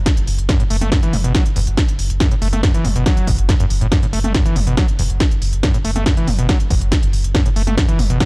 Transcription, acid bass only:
0.49 0.58 F#2 loud
0.60 0.63 A2 loud
0.70 0.76 A3 loud
0.81 0.90 A3 medium
0.92 1.01 F#2 medium
1.03 1.15 E3 loud
1.13 1.17 F#2 medium
1.24 1.33 B2 medium
1.35 1.44 F#3 medium
1.56 1.60 E2 loud
2.20 2.29 F#2 loud
2.31 2.35 A2 loud
2.42 2.48 A3 loud
2.53 2.61 A3 medium
2.63 2.72 F#2 medium
2.74 2.86 E3 loud
2.85 2.88 F#2 medium
2.96 3.04 B2 medium
3.06 3.29 F#3 medium
3.27 3.31 G2 loud
3.49 3.55 F#2 medium
3.60 3.66 F#2 medium
3.81 3.87 A2 medium
3.92 4.01 F#2 loud
4.03 4.06 A2 loud
4.13 4.19 A3 loud
4.24 4.33 A3 medium
4.35 4.44 F#2 medium
4.46 4.58 E3 loud
4.56 4.60 F#2 medium
4.67 4.76 B2 medium
4.77 4.87 F#3 medium
4.99 5.03 E2 loud
5.63 5.72 F#2 loud
5.74 5.78 A2 loud
5.85 5.91 A3 loud
5.96 6.04 A3 medium
6.06 6.15 F#2 medium
6.17 6.29 E3 loud
6.28 6.31 F#2 medium
6.39 6.47 B2 medium
6.49 6.58 F#3 medium
6.71 6.74 E2 loud
7.35 7.44 F#2 loud
7.46 7.49 A2 loud
7.56 7.62 A3 loud
7.67 7.76 A3 medium
7.77 7.87 F#2 medium
7.88 8.00 E3 loud
7.99 8.03 F#2 medium
8.10 8.19 B2 medium
8.20 8.25 F#3 medium

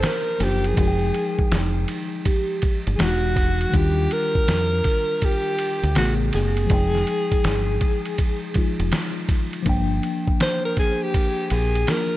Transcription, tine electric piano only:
0.00 0.35 F3 medium
0.00 0.36 A#3 medium
0.00 0.37 D4 medium
0.00 0.38 G4 medium
0.38 0.73 F3 soft
0.38 0.77 A#3 soft
0.38 0.77 D4 soft
0.38 0.78 F4 soft
0.74 2.94 F3 medium
0.74 2.95 G#3 medium
0.79 2.96 D#4 medium
0.79 0.87 F#4 medium
0.87 3.01 G5 medium
2.98 3.73 E3 medium
2.98 3.73 G#3 medium
2.98 3.74 D#4 medium
2.98 3.09 E4 medium
3.08 3.78 F#4 medium
3.70 5.90 D#3 medium
3.70 5.91 G3 medium
3.75 5.92 D4 medium
3.75 5.93 F4 medium
5.95 6.69 C#3 medium
5.95 6.70 A3 medium
5.95 6.71 B3 medium
5.95 6.71 G#4 medium
6.67 8.50 F3 medium
6.67 8.51 G#3 medium
6.71 8.52 D#4 medium
6.71 8.53 G5 medium
8.54 9.61 F3 medium
8.54 9.66 G#3 soft
8.54 9.67 D#4 soft
8.54 9.67 F4 medium
9.63 11.83 F3 medium
9.63 11.84 A#3 medium
9.67 11.85 D4 medium
9.67 11.86 G5 medium
11.87 12.17 F3 soft
11.87 12.17 A#3 soft
11.87 12.17 D4 soft
11.87 12.17 F4 soft

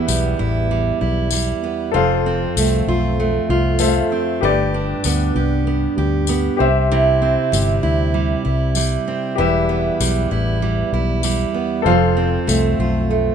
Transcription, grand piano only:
0.00 1.89 G4 medium
0.00 1.90 B4 medium
0.00 1.91 E5 medium
1.92 3.75 A4 medium
1.92 3.76 C5 medium
1.96 3.77 F5 medium
3.79 4.41 A4 medium
3.79 4.42 C5 medium
3.79 3.88 E5 medium
3.88 4.46 F5 medium
4.41 6.54 G4 medium
4.41 6.55 B4 medium
4.41 6.56 D5 medium
6.57 9.02 G4 medium
6.57 9.03 C5 medium
6.61 9.04 E5 medium
9.35 11.81 G4 medium
9.35 11.82 B4 medium
9.40 11.83 E5 medium
11.82 13.35 A4 medium
11.82 13.35 C5 medium
11.86 13.35 F5 medium

